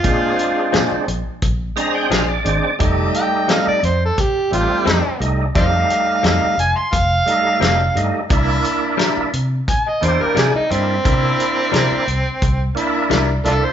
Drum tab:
HH |xxxxxxxx|xxxxxxxx|xxxxxxxx|xxxxxxxx|
SD |--o---o-|--o---o-|--o---o-|--o---o-|
BD |o---o---|o---o---|o---o---|o---o---|

HH |xxxxxxxx|
SD |--o---o-|
BD |o---o---|